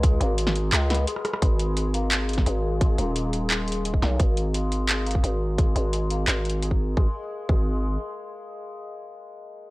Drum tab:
HH |x---x---x---x---x---xx--x---x---|x---x---x---x---x---xx--x-------|x---x---x---x---x---xx--x-------|x---x---x---x---x---xx--x-------|
CP |----------------x---------------|----------------x---------------|----------------x---------------|----------------x---------------|
SD |----------o---------o-----r-r-r-|----------------------o---------|----------------------------o---|--------------------------------|
BD |o-------------------------------|o---------------------o---------|o-------------------------o-----|o---------------------o---------|

HH |x---x---x---x---x---xx--x-------|--------------------------------|--------------------------------|
CP |----------------x---------------|--------------------------------|--------------------------------|
SD |--------------------------------|--------------------------------|--------------------------------|
BD |o-------------------------o-----|o-----------o-------------------|--------------------------------|